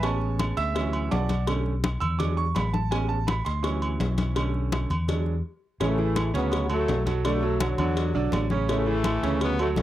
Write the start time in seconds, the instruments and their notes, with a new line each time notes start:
Already playing: fingered electric bass A1
0.03 grand piano G#3 B3 C#4 C#5 G#5 A5 C#6, cowbell, high conga, low agogo
0.22 high conga
0.39 cowbell, high conga, low timbale, low agogo
0.57 fingered electric bass D2, grand piano E5 E6, cowbell
0.74 grand piano E3 F#3 C#4, cowbell, high conga, low agogo
0.93 high conga, low agogo
1.11 fingered electric bass B1, grand piano D5 F#5 A5 D6, cowbell, high conga, low timbale
1.29 cowbell, high conga, low agogo
1.47 grand piano D3 A3 C#4, cowbell, high conga, low agogo
1.66 high conga
1.84 cowbell, high conga, low timbale, low agogo
2.00 fingered electric bass E2, grand piano E6, low conga, low agogo
2.18 grand piano F#3 G#3 D4 D6, cowbell, high conga, low conga, low agogo
2.37 grand piano C#6, high conga
2.55 fingered electric bass A1, grand piano B5, cowbell, high conga, low timbale, low agogo
2.73 grand piano A5, high conga
2.91 grand piano G#3 B3 C#4 G#5, cowbell, high conga, low agogo
3.09 grand piano A5, high conga
3.27 grand piano B5, cowbell, high conga, low timbale, low agogo
3.45 fingered electric bass D2, grand piano C6, cowbell
3.63 grand piano E3 F#3 C#4 C#6, cowbell, high conga, low agogo
3.82 high conga, low agogo
4.00 fingered electric bass B1, cowbell, high conga, low timbale
4.18 cowbell, high conga, low agogo
4.35 grand piano D3 A3 C#4, cowbell, high conga, low agogo
4.54 high conga
4.72 cowbell, high conga, low timbale, low agogo
4.90 fingered electric bass E2, low conga, low agogo
5.08 grand piano F#3 G#3 D4, cowbell, high conga, low conga, low agogo
5.26 high conga
5.80 fingered electric bass A1, grand piano C#3 C#4 C#5, trombone section E3 A3, cowbell, high conga, low agogo
5.98 grand piano E3 E4 G#4, high conga
6.16 cowbell, high conga, low timbale, low agogo
6.34 fingered electric bass D2, grand piano C#3 C#4 C#5, trombone section F#3 B3, cowbell
6.52 cowbell, high conga, low agogo
6.70 grand piano F#3 F#4 A4, trombone section F#3 A3, high conga, low agogo
6.88 fingered electric bass B1, cowbell, high conga, low timbale
7.06 grand piano F#3 F#4 A4, cowbell, high conga, low agogo
7.24 grand piano D3 D4 D5, trombone section F#3 A3, cowbell, low agogo
7.42 grand piano F#3 F#4 A4, high conga
7.60 trombone section D3 F#3, cowbell, high conga, low timbale, low agogo
7.78 fingered electric bass E2, grand piano D3 D4 D5, low conga, low agogo
7.96 cowbell, high conga, low agogo
8.14 fingered electric bass B1, grand piano D3 D4 D5, high conga
8.32 fingered electric bass A1, cowbell, high conga, low timbale, low agogo
8.50 grand piano C#3 C#4 C#5, high conga
8.68 grand piano C#3 C#4 C#5, trombone section E3 A3, cowbell, high conga, low agogo
8.86 grand piano E3 E4 G#4, high conga
9.04 cowbell, high conga, low timbale, low agogo
9.23 fingered electric bass D2, grand piano C#3 C#4 C#5, cowbell
9.40 trombone section F#3 B3, cowbell, high conga, low agogo
9.58 grand piano F#3 F#4 A4, trombone section F#3 A3, high conga, low agogo
9.76 fingered electric bass B1, trombone section A3 C#4, cowbell, high conga, low timbale